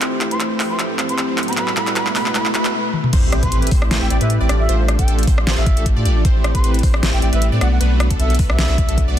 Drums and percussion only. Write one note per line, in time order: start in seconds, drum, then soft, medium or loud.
0.01 clap medium
0.01 closed hi-hat medium
0.21 clap medium
0.21 closed hi-hat medium
0.31 closed hi-hat medium
0.40 clap medium
0.40 closed hi-hat medium
0.60 clap medium
0.60 open hi-hat loud
0.79 clap medium
0.79 closed hi-hat medium
0.99 clap medium
0.99 closed hi-hat medium
1.09 closed hi-hat medium
1.18 clap medium
1.18 closed hi-hat medium
1.38 clap medium
1.38 closed hi-hat soft
1.43 closed hi-hat medium
1.48 closed hi-hat medium
1.53 closed hi-hat medium
1.57 clap medium
1.57 closed hi-hat medium
1.68 clap medium
1.77 clap loud
1.77 closed hi-hat medium
1.87 clap medium
1.87 closed hi-hat medium
1.96 clap loud
1.96 closed hi-hat medium
2.07 clap medium
2.16 clap loud
2.16 open hi-hat loud
2.26 clap medium
2.35 clap loud
2.35 closed hi-hat medium
2.46 clap medium
2.55 clap loud
2.55 closed hi-hat medium
2.65 clap loud
2.65 closed hi-hat medium
2.93 high tom medium
3.04 mid tom medium
3.13 kick loud
3.13 closed hi-hat medium
3.13 crash loud
3.32 cross-stick medium
3.32 closed hi-hat medium
3.43 kick medium
3.43 closed hi-hat medium
3.52 closed hi-hat medium
3.62 closed hi-hat medium
3.67 closed hi-hat medium
3.71 kick loud
3.71 open hi-hat medium
3.82 cross-stick medium
3.91 snare loud
3.91 closed hi-hat medium
4.10 closed hi-hat medium
4.21 closed hi-hat medium
4.30 closed hi-hat medium
4.49 cross-stick medium
4.49 closed hi-hat medium
4.69 closed hi-hat medium
4.88 cross-stick medium
4.88 closed hi-hat medium
4.99 kick medium
4.99 closed hi-hat medium
5.08 closed hi-hat medium
5.19 closed hi-hat medium
5.23 closed hi-hat medium
5.27 kick loud
5.27 open hi-hat medium
5.38 cross-stick medium
5.47 snare loud
5.47 closed hi-hat medium
5.66 kick loud
5.66 closed hi-hat medium
5.77 closed hi-hat medium
5.86 kick medium
5.86 closed hi-hat medium
6.05 closed hi-hat medium
6.25 kick loud
6.25 closed hi-hat medium
6.44 cross-stick medium
6.44 closed hi-hat medium
6.55 kick medium
6.55 closed hi-hat medium
6.64 closed hi-hat medium
6.74 closed hi-hat soft
6.79 closed hi-hat medium
6.83 kick loud
6.83 open hi-hat medium
6.94 cross-stick medium
7.03 snare loud
7.03 closed hi-hat medium
7.22 closed hi-hat medium
7.33 closed hi-hat medium
7.42 closed hi-hat medium
7.61 cross-stick medium
7.61 closed hi-hat medium
7.81 closed hi-hat medium
8.00 cross-stick medium
8.00 closed hi-hat medium
8.11 kick medium
8.11 closed hi-hat medium
8.20 closed hi-hat medium
8.30 closed hi-hat soft
8.35 closed hi-hat medium
8.39 kick loud
8.39 open hi-hat medium
8.50 cross-stick medium
8.59 snare loud
8.59 closed hi-hat medium
8.78 kick loud
8.78 closed hi-hat medium
8.89 closed hi-hat medium
8.98 kick medium
8.98 closed hi-hat medium